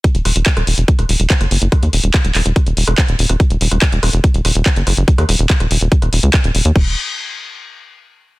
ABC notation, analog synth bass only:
X:1
M:4/4
L:1/16
Q:1/4=143
K:Ebphr
V:1 name="Analog synth bass" clef=bass
z E,,, E,,, E,,, z E,,, E,,, F,,, z E,,, E,,, E,,, z G,,, G,,, G,,, | z E,, E,,, E,,, z E,,, E,,, E,,, z E,,, E,,, F,,, z E,,, E,,, E,,, | z E,,, E,,, E,,, z E,,, E,,, F,,, z E,,, E,,, E,,, z G,,, G,,, G,,, | z E,, E,,, E,,, z E,,, E,,, E,,, z E,,, E,,, D,, z E,,, E,,, E,, |
E,,,2 z12 z2 |]